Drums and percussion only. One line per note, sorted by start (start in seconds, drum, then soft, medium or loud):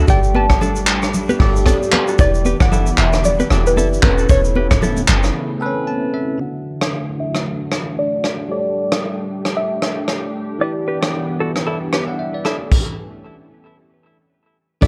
0.08 kick loud
0.08 shaker medium
0.23 shaker medium
0.34 high conga medium
0.50 kick medium
0.50 cross-stick loud
0.50 shaker medium
0.61 low conga medium
0.61 shaker medium
0.76 shaker medium
0.87 clap medium
1.02 cross-stick medium
1.02 shaker medium
1.14 low conga medium
1.14 shaker medium
1.29 high conga medium
1.29 shaker soft
1.40 kick loud
1.40 cross-stick loud
1.40 open hi-hat medium
1.56 shaker medium
1.66 kick loud
1.66 cross-stick loud
1.66 hi-hat pedal medium
1.66 high conga medium
1.66 shaker medium
1.83 shaker soft
1.92 clap medium
1.92 high conga medium
1.92 low conga medium
2.08 shaker medium
2.19 kick loud
2.19 shaker medium
2.34 shaker medium
2.45 high conga medium
2.45 shaker medium
2.60 kick medium
2.60 cross-stick loud
2.60 shaker medium
2.72 low conga medium
2.72 shaker medium
2.86 shaker medium
2.98 clap medium
2.98 shaker medium
3.13 cross-stick medium
3.13 shaker medium
3.24 low conga medium
3.24 shaker medium
3.40 high conga medium
3.40 shaker medium
3.50 cross-stick loud
3.50 shaker medium
3.67 shaker medium
3.77 high conga medium
3.77 shaker medium
3.93 shaker soft
4.03 kick loud
4.03 cross-stick medium
4.03 clap medium
4.03 high conga medium
4.03 low conga medium
4.18 shaker medium
4.29 kick loud
4.29 shaker loud
4.45 shaker medium
4.55 high conga medium
4.71 kick medium
4.71 cross-stick loud
4.71 mid tom loud
4.71 shaker medium
4.82 low conga medium
4.82 shaker medium
4.97 high conga medium
4.97 shaker medium
5.08 clap medium
5.08 low conga medium
5.08 shaker medium
5.23 cross-stick medium
5.23 shaker medium
6.81 cross-stick loud
7.35 cross-stick medium
7.72 cross-stick loud
8.24 cross-stick medium
8.92 cross-stick loud
9.45 cross-stick medium
9.82 cross-stick loud
10.08 cross-stick loud
11.03 cross-stick loud
11.56 cross-stick medium
11.93 cross-stick loud
12.45 cross-stick medium
12.72 kick loud
12.72 crash medium
14.82 kick loud
14.82 crash medium